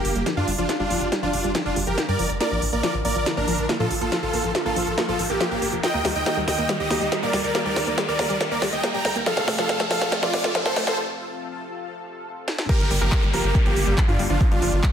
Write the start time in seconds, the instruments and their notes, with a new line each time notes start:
Already playing: analog synth pad D3 G3 A#3 F4 G4, supersaw synth A#3 G4, riser
0.05 analog synth bass G1, open hi-hat
0.16 analog synth bass G1, synth pluck G3, closed hi-hat
0.26 synth pluck F3, snare, closed hi-hat
0.37 analog synth bass G2, supersaw synth D4 F4
0.48 analog synth bass G1, synth pluck G3, open hi-hat
0.58 analog synth bass G1, synth pluck F3, supersaw synth D4 F4, closed hi-hat
0.69 snare, closed hi-hat
0.80 analog synth bass G1, synth pluck G3, supersaw synth D4 F4
0.91 analog synth bass G1, synth pluck F3, open hi-hat
1.01 analog synth bass G1, closed hi-hat
1.12 synth pluck G3, snare, closed hi-hat
1.23 analog synth bass G1, synth pluck F3, supersaw synth D4 F4
1.33 analog synth bass G1, open hi-hat
1.44 analog synth bass G1, synth pluck G3, closed hi-hat
1.55 synth pluck F3, snare, closed hi-hat
1.66 analog synth bass G1, supersaw synth D4 F4
1.76 analog synth bass G1, synth pluck G3, open hi-hat
1.87 analog synth bass G1, synth pluck F3, supersaw synth G4 A#4, closed hi-hat
1.98 snare, closed hi-hat
2.08 analog synth bass G2, synth pluck G3, supersaw synth A#4 D5
2.19 analog synth bass G1, synth pluck F3, open hi-hat
2.30 analog synth bass G1, closed hi-hat
2.41 analog synth pad F3 A#4, synth pluck A#3, supersaw synth A#4 D5, snare, closed hi-hat
2.51 analog synth bass A#1, synth pluck F3
2.62 analog synth bass A#1, open hi-hat
2.73 analog synth bass A#1, synth pluck A#3, supersaw synth A#4 D5, closed hi-hat
2.83 synth pluck F3, snare, closed hi-hat
2.94 analog synth bass A#1
3.05 analog synth bass A#1, synth pluck A#3, supersaw synth A#4 D5, open hi-hat
3.16 analog synth bass A#1, synth pluck F3, closed hi-hat
3.26 snare, closed hi-hat
3.37 analog synth bass A#1, synth pluck A#3, supersaw synth D4 A#4
3.48 analog synth bass A#1, synth pluck F3, open hi-hat
3.58 analog synth bass A#1, closed hi-hat
3.69 synth pluck A#3, snare, closed hi-hat
3.80 analog synth bass A#2, synth pluck F3, supersaw synth F4 A4
3.90 analog synth bass A#1, open hi-hat
4.01 analog synth bass A#1, synth pluck A#3, supersaw synth F4 A4, closed hi-hat
4.12 synth pluck F3, snare, closed hi-hat
4.23 analog synth bass A#1, supersaw synth F4 A4
4.33 analog synth bass A#1, synth pluck A#3, open hi-hat
4.44 analog synth bass A#1, synth pluck F3, closed hi-hat
4.55 snare, closed hi-hat
4.66 analog synth bass A#1, synth pluck A#3, supersaw synth F4 A4
4.76 analog synth bass A#1, synth pluck F3, open hi-hat
4.87 analog synth bass A#1, closed hi-hat
4.98 synth pluck A#3, snare, closed hi-hat
5.08 analog synth bass A#1, synth pluck F3, supersaw synth F4 A4
5.19 analog synth bass A#1, open hi-hat
5.30 analog synth bass A#1, synth pluck A#3, supersaw synth A#3 G4, closed hi-hat
5.40 synth pluck F3, snare, closed hi-hat
5.51 analog synth bass A#1, supersaw synth A#3 G4
5.62 analog synth bass A#1, synth pluck A#3, open hi-hat
5.73 analog synth bass F1, synth pluck F3, closed hi-hat
5.83 analog synth pad D#3 G3 G4, supersaw synth D#5 G5, snare, closed hi-hat
5.94 analog synth bass D#2, synth pluck A#3
6.05 analog synth bass D#2, synth pluck G3, snare, open hi-hat
6.16 analog synth bass D#2, supersaw synth D#5 G5, closed hi-hat
6.26 synth pluck A#3, snare, closed hi-hat
6.37 analog synth bass D#2, synth pluck G3
6.48 analog synth bass D#2, supersaw synth D#5 G5, snare, open hi-hat
6.58 analog synth bass D#2, synth pluck A#3, closed hi-hat
6.69 synth pluck G3, snare, closed hi-hat
6.80 analog synth bass D#2, supersaw synth G4 D#5
6.90 analog synth bass D#2, synth pluck A#3, snare, open hi-hat
7.01 analog synth bass D#2, synth pluck G3, closed hi-hat
7.12 snare, closed hi-hat
7.23 analog synth bass D#1, synth pluck A#3, supersaw synth A#4 D5
7.33 analog synth bass D#2, synth pluck G3, snare, open hi-hat
7.44 analog synth bass D#2, supersaw synth A#4 D5, closed hi-hat
7.55 synth pluck A#3, snare, closed hi-hat
7.66 analog synth bass D#2, synth pluck G3, supersaw synth A#4 D5
7.76 analog synth bass D#2, snare, open hi-hat
7.87 analog synth bass D#2, synth pluck A#3, closed hi-hat
7.98 synth pluck G3, snare, closed hi-hat
8.08 analog synth bass D#2, supersaw synth A#4 D5
8.19 analog synth bass D#2, synth pluck A#3, snare, open hi-hat
8.30 analog synth bass D#2, synth pluck G3, closed hi-hat
8.41 snare, closed hi-hat
8.51 analog synth bass D#2, synth pluck A#3, supersaw synth A#4 D5
8.62 analog synth bass D#2, synth pluck G3, snare, open hi-hat
8.73 analog synth bass D#2, supersaw synth D#5 G5, closed hi-hat
8.83 synth pluck A#3, snare, closed hi-hat
8.94 analog synth bass D#1, synth pluck G3, supersaw synth G5 A#5
9.05 analog synth bass D#2, snare, open hi-hat
9.16 analog synth bass D#2, synth pluck A#3, closed hi-hat
9.26 analog synth pad C3 F3 A3 F4 A4, synth pluck F3, supersaw synth A4 F5, snare, closed hi-hat
9.37 analog synth bass F1, snare
9.48 analog synth bass F1, synth pluck A3, snare, open hi-hat
9.58 analog synth bass F1, synth pluck F3, supersaw synth A4 F5, snare, closed hi-hat
9.69 snare, closed hi-hat
9.80 analog synth bass F1, synth pluck A3, snare
9.91 analog synth bass F1, synth pluck F3, supersaw synth A4 F5, snare, open hi-hat
10.01 analog synth bass F1, snare, closed hi-hat
10.12 synth pluck A3, snare, closed hi-hat
10.23 analog synth bass F1, synth pluck F3, supersaw synth F4 D5, snare
10.34 analog synth bass F1, snare, open hi-hat
10.44 analog synth bass F1, synth pluck A3, snare, closed hi-hat
10.55 synth pluck F3, snare, closed hi-hat
10.65 analog synth bass F2, supersaw synth A4 C5, snare
10.76 analog synth bass F1, synth pluck A3, snare, open hi-hat
10.87 analog synth bass F1, synth pluck F3, supersaw synth A4 C5, snare, closed hi-hat
12.48 snare
12.58 snare
12.69 analog synth pad D3 G3 A#3 F4 G4, synth pluck F3, supersaw synth G4 A#4, grand piano A#4, kick, closed hi-hat, crash, downlifter
12.80 analog synth bass G1, closed hi-hat
12.91 analog synth bass G1, synth pluck G3, open hi-hat
13.01 analog synth bass G1, synth pluck F3, supersaw synth G4 A#4, grand piano A#4, closed hi-hat
13.12 kick, clap, closed hi-hat
13.23 analog synth bass G1, synth pluck G3, closed hi-hat
13.33 analog synth bass G1, synth pluck F3, supersaw synth G4 A#4, grand piano A#4, open hi-hat
13.44 analog synth bass G1, closed hi-hat
13.55 synth pluck G3, kick, closed hi-hat
13.66 analog synth bass G1, synth pluck F3, supersaw synth A#3 G4, grand piano G4, closed hi-hat
13.76 analog synth bass G1, open hi-hat
13.87 analog synth bass G1, synth pluck G3, closed hi-hat
13.98 synth pluck F3, kick, clap, closed hi-hat
14.09 analog synth bass G2, supersaw synth D4 F4, grand piano F4, closed hi-hat
14.19 analog synth bass G1, synth pluck G3, open hi-hat
14.30 analog synth bass G1, synth pluck F3, supersaw synth D4 F4, grand piano F4, closed hi-hat
14.41 kick, closed hi-hat
14.51 analog synth bass G1, synth pluck G3, supersaw synth D4 F4, grand piano F4, closed hi-hat
14.62 analog synth bass G1, synth pluck F3, open hi-hat
14.73 analog synth bass G1, closed hi-hat
14.83 synth pluck G3, kick, clap, closed hi-hat